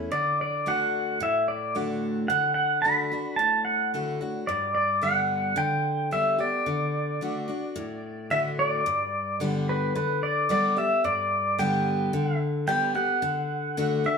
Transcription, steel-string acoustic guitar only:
0.11 0.65 D3 medium
0.66 1.18 D3 medium
0.66 1.18 A3 medium
0.66 1.18 D4 medium
0.66 1.18 F#4 medium
1.20 2.24 A2 medium
1.75 2.27 D3 medium
1.75 2.27 A3 medium
1.75 2.27 D4 medium
1.75 2.27 F#4 medium
2.30 2.83 D3 medium
2.84 3.11 D3 medium
2.84 3.11 A3 medium
2.84 3.11 D4 medium
2.84 3.10 F#4 medium
3.12 3.39 D4 soft
3.12 3.38 F#4 medium
3.39 4.43 A2 medium
3.94 4.20 D3 medium
3.94 4.20 A3 medium
3.94 4.20 D4 medium
3.94 4.20 F#4 medium
4.21 4.48 D4 soft
4.21 4.47 F#4 medium
4.49 5.52 G2 medium
5.01 5.54 D3 medium
5.01 5.55 G3 medium
5.01 5.55 B3 medium
5.01 5.55 G4 medium
5.56 6.10 D3 medium
6.11 6.38 D3 medium
6.11 6.39 G3 medium
6.11 6.39 B3 medium
6.11 6.37 G4 medium
6.38 6.66 B3 soft
6.38 6.65 G4 medium
6.66 7.20 D3 medium
7.21 7.48 D3 medium
7.21 7.48 A3 medium
7.21 7.48 D4 medium
7.21 7.47 F#4 medium
7.48 7.75 D4 soft
7.48 7.75 F#4 medium
7.76 8.80 A2 medium
8.30 8.83 D3 medium
8.30 8.83 A3 medium
8.30 8.83 D4 medium
8.30 8.83 F#4 medium
8.86 9.90 G2 medium
9.40 9.92 D3 medium
9.40 9.92 G3 medium
9.40 9.93 B3 medium
9.40 9.93 G4 medium
9.95 10.48 D3 medium
10.49 10.76 D3 medium
10.49 10.76 G3 medium
10.49 10.76 B3 medium
10.49 10.75 G4 medium
10.77 11.04 B3 soft
10.77 11.03 G4 medium
11.04 12.08 G2 medium
11.58 12.11 D3 medium
11.58 12.11 G3 medium
11.58 12.11 B3 medium
11.58 12.11 G4 medium
12.13 12.66 D3 medium
12.67 12.94 D3 medium
12.67 12.94 G3 medium
12.67 12.95 B3 loud
12.67 12.93 G4 medium
12.95 13.22 B3 soft
12.95 13.21 G4 medium
13.22 13.76 D3 medium
13.77 14.04 D3 medium
13.77 14.04 A3 medium
13.77 14.04 D4 medium
13.77 14.03 F#4 medium
14.04 14.18 D4 soft
14.04 14.18 F#4 medium

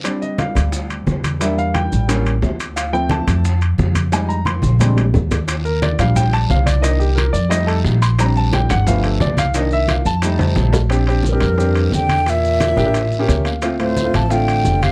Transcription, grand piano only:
0.04 1.36 G3 medium
0.04 1.37 C4 soft
0.04 1.37 D4 medium
0.04 0.21 D5 medium
0.22 0.38 D#5 medium
0.39 0.87 F5 medium
1.40 2.05 G3 medium
1.40 2.06 A#3 soft
1.40 2.06 D4 medium
1.40 1.58 E5 medium
1.58 1.75 F5 medium
1.74 2.22 G5 medium
2.08 2.31 G3 medium
2.08 2.31 A#3 medium
2.08 2.31 C#4 medium
2.76 2.93 F5 medium
2.93 3.42 F3 medium
2.93 3.42 A3 medium
2.93 3.42 C4 medium
2.93 3.10 G5 loud
3.11 3.58 A5 medium
4.12 4.35 G3 medium
4.12 4.35 G#3 medium
4.12 4.36 D#4 medium
4.12 4.30 G#5 medium
4.29 4.46 A#5 medium
4.46 4.94 C6 medium
4.80 5.03 G3 medium
4.80 5.03 G#3 medium
4.80 5.03 C4 medium
4.80 5.04 D4 medium
5.65 5.82 A#4 medium
5.83 5.99 D5 medium
5.99 6.80 F3 medium
5.99 6.80 G3 medium
5.99 6.80 D4 medium
5.99 6.16 F5 medium
6.16 6.33 G5 medium
6.33 6.50 A5 loud
6.50 6.67 F5 medium
6.66 6.83 D5 medium
6.81 7.05 D#3 soft
6.81 7.05 A#3 soft
6.81 7.06 D4 medium
6.81 6.99 D#5 medium
7.00 7.17 G4 medium
7.15 7.33 A#4 medium
7.33 7.50 D5 medium
7.49 7.99 G3 medium
7.49 7.99 A3 medium
7.49 7.99 D#4 medium
7.49 7.67 D#5 loud
7.67 7.78 A4 medium
8.02 8.19 C6 medium
8.19 8.67 G3 medium
8.19 8.68 C4 medium
8.19 8.68 D4 medium
8.19 8.36 A#5 medium
8.37 8.53 A5 medium
8.54 8.70 G5 medium
8.71 8.87 F#5 loud
8.87 9.35 F3 medium
8.87 9.35 A3 medium
8.87 9.36 B3 medium
8.87 9.04 F5 medium
9.05 9.21 A4 medium
9.22 9.38 D5 medium
9.39 9.55 F5 loud
9.55 10.03 D#3 medium
9.55 10.04 A#3 soft
9.55 10.04 D4 medium
9.55 9.72 D#5 medium
9.73 9.89 E5 loud
9.91 10.06 F5 medium
10.06 10.78 A5 loud
10.23 10.71 G3 medium
10.23 10.72 A3 medium
10.23 10.72 D#4 medium
10.90 11.02 C4 medium
10.90 11.02 D4 medium
10.90 11.03 G4 medium
11.08 11.26 C4 medium
11.08 11.26 D4 medium
11.08 11.26 G4 medium
11.32 11.50 C4 medium
11.32 11.50 D4 medium
11.32 11.51 G4 medium
11.57 12.06 C4 medium
11.57 12.06 D4 medium
11.57 12.06 G4 medium
12.76 12.83 A#3 medium
12.76 12.83 D4 medium
12.76 12.83 G4 medium
12.85 12.94 A#3 medium
12.85 12.95 D4 medium
12.85 12.94 G4 medium
13.19 13.50 A#3 medium
13.19 13.50 C#4 medium
13.19 13.50 G4 medium
13.28 13.44 C#5 medium
13.45 13.61 F5 medium
13.63 13.75 A3 medium
13.63 13.75 C4 medium
13.63 13.75 F4 medium
13.79 13.97 A3 medium
13.79 13.98 C4 medium
13.79 13.98 F4 medium
14.04 14.23 A3 medium
14.04 14.23 C4 medium
14.04 14.23 F4 medium
14.30 14.78 A3 medium
14.30 14.78 C4 medium
14.30 14.78 F4 medium

